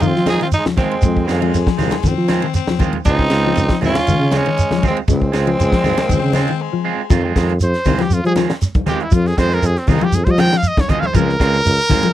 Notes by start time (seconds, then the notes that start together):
0.00 F2 D#3 F4, ride bell, high conga, shekere
0.08 C4
0.15 F3, snare
0.26 D#3 G#3 C4 F4 G#4, snare, ride bell, high conga, shekere
0.32 D#4
0.41 D#3 F4, snare, ride bell
0.46 C4
0.52 D#4, ride bell, shekere
0.57 G#3
0.66 F3, snare, high conga
0.77 D#3 G#3 C4 F4, kick, snare, ride bell, low conga, shekere
0.83 G#3
0.91 F2, ride bell
1.02 F2 G#3, kick, ride bell, shekere
1.17 kick
1.24 D#3 G#3 A#3
1.28 F2 G#3 C4 F4, snare, ride bell, shekere
1.40 F3 G#3 C4 F4, ride bell
1.54 F2, snare, ride bell, shekere
1.67 F3, kick, snare
1.77 C2 D#3 G#3 C4 F4, snare, open hi-hat, high conga, low conga, shekere
1.91 F2, snare, ride bell, high conga
2.03 F2 D#3, kick, snare, ride bell, low conga, shekere
2.07 C4
2.18 F3
2.28 D#3 G#3 C4 F4, snare, ride bell, high conga, shekere
2.42 D#3, ride bell
2.54 C4, snare, ride bell, shekere
2.67 F3, snare, high conga
2.79 D#3 G#3 C4 F4, kick, ride bell, high conga, low conga, shekere
2.93 F2, ride bell, high conga
3.05 C#2 G#3 C4 D#4 F4, muted clean electric guitar stroke, kick, ride bell, shekere
3.19 kick
3.30 C#2 G#3 C4 F4, snare, ride bell, shekere
3.45 F3 C4 F4
3.55 C#2, snare, ride bell, shekere
3.69 F3, kick, snare
3.81 G#1 G#3 C4 F4, open hi-hat, high conga, low conga, shekere
3.86 C#4 F4
3.95 C#2, snare, high conga
4.07 C#2 D#3, ride bell, shekere
4.19 C#3
4.31 G#3 C4 F4, snare, ride bell, high conga, shekere
4.37 G#3 C#4
4.46 D#3, ride bell
4.57 ride bell, shekere
4.71 F3, snare, high conga
4.83 G#3 C4 F4, kick, ride bell, high conga, low conga, shekere
4.87 G#3 C4
4.97 C#2, ride bell
5.08 C#2 G#3, kick, snare, ride bell, shekere
5.13 G#3 C4
5.22 kick
5.32 C#2 G#3 C4 F4, snare, ride bell, shekere
5.47 F3, ride bell
5.58 C#2 G#3, ride bell, shekere
5.72 F3, kick, snare
5.83 G#1 G#3 C4 F4, open hi-hat, high conga, low conga, shekere
5.97 C#2 A#3, snare, ride bell, high conga
6.09 C#2 D#3 C4, kick, ride bell, high conga, low conga, shekere
6.23 C#3
6.33 G#3 C4 F4, snare, ride bell, high conga, shekere
6.48 D#3, ride bell
6.61 G#3
6.73 F3
6.85 G#3 C4 F4
7.10 F2 D#3 F3 C4 F4, muted clean electric guitar stroke, kick, snare, closed hi-hat, shekere
7.24 G#3 C4 F4
7.36 F2 D#3 G#3 C4 F4, kick, snare, closed hi-hat, shekere
7.49 closed hi-hat
7.60 F2 C5, closed hi-hat, shekere
7.74 snare, closed hi-hat
7.85 C2 D#3 G#3 C4 F4, kick, open hi-hat, high conga, low conga, shekere
7.99 F2 F3 G4, snare, closed hi-hat, high conga
8.10 F2 F4, closed hi-hat, shekere
8.24 F3 G3 G#4, closed hi-hat
8.36 D#3 F3 G#3 C4 F4, snare, closed hi-hat, high conga, shekere
8.49 muted clean electric guitar stroke, snare, closed hi-hat
8.61 snare, closed hi-hat, shekere
8.74 kick, closed hi-hat, high conga
8.86 D#3 G#3 C4 F4 G4, snare, closed hi-hat, high conga, low conga, shekere
9.00 F2 E4, closed hi-hat
9.11 F2 F3 F4, kick, closed hi-hat, shekere
9.26 G#4, snare, closed hi-hat
9.37 F2 D#3 G#3 C4 C5, kick, snare, closed hi-hat, shekere
9.51 G#3 C4 F4 A#4, snare, closed hi-hat
9.62 F2 G#4, closed hi-hat, shekere
9.76 C4, snare, closed hi-hat
9.87 C2 D#3 G#3 C4 D#4 F4, kick, open hi-hat, high conga, low conga, shekere
10.01 F2 F3 G4, closed hi-hat, high conga
10.12 F2 G#4, closed hi-hat, high conga, shekere
10.25 F3 G3 C5, kick, closed hi-hat
10.31 D#5
10.38 D#3 F3 G#3 C4 F4 G5, snare, closed hi-hat, high conga, shekere
10.52 F3, snare, closed hi-hat
10.57 F5
10.63 closed hi-hat, shekere
10.68 D#5
10.77 C#5, kick, snare, high conga
10.88 D#3 G#3 C4 F4 D#5, kick, closed hi-hat, low conga, shekere
11.00 F2 F5, closed hi-hat, high conga
11.07 C5
11.13 C#2 F3 G#3 C4 F4 A#4, kick, closed hi-hat, shekere
11.29 snare
11.39 C#2 G#3 C4 F4, kick, snare, closed hi-hat, shekere
11.54 snare, closed hi-hat
11.65 C#2, closed hi-hat, shekere
11.79 snare, closed hi-hat
11.90 G#1 D#3 G#3 C4 F4, kick, open hi-hat, high conga, low conga, shekere
12.03 C#2 F3, snare, closed hi-hat, high conga